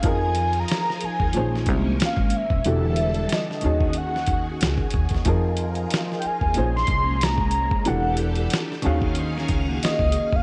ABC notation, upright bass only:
X:1
M:4/4
L:1/16
Q:"Swing 16ths" 1/4=92
K:Ebdor
V:1 name="Upright bass" clef=bass
F,,4 z3 E,, B,,,2 C,,2 z A,,, z E,,, | =E,,,4 z2 _E,,4 E,,2 D,, z E,, E,, | F,,4 z3 E,, B,,,2 C,,4- C,, z | =E,,,4 z2 _E,,4 D,,2 z D,, z =E,, |]